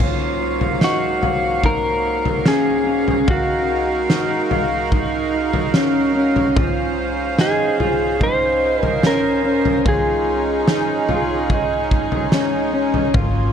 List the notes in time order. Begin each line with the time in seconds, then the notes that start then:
0.00 G#2 F#3 A#3 F4 F5, kick, floor tom, crash
0.61 floor tom
0.81 D#4 F#4, snare
1.23 F5, floor tom
1.64 D#4 A#4, kick, floor tom
2.25 floor tom
2.46 C#4 G#4, snare
2.87 C#4
3.08 floor tom
3.27 G#3 D#4 F#4 A#4 F5, kick, floor tom
4.10 D#4, snare
4.51 F5, floor tom
4.92 D#4, kick, floor tom
5.53 floor tom
5.74 C#4, snare
6.15 C#4
6.36 floor tom
6.55 G#2 C#4 F4 C5, kick, floor tom
7.38 D#4 G#4, snare
7.80 F4, floor tom
8.21 D#4 C5, kick, floor tom
8.83 A#4, floor tom
9.03 C#4 A#4, snare
9.44 C#4
9.65 floor tom
9.85 G#3 C#4 D#4 F4 G#4, kick, floor tom
10.68 D#4, snare
11.09 F4, floor tom
11.50 D#4, kick, floor tom
11.91 kick
12.12 floor tom
12.32 C#4, snare
12.73 C#4
12.94 floor tom
13.14 G#1 F#3 A#3 F4, kick, floor tom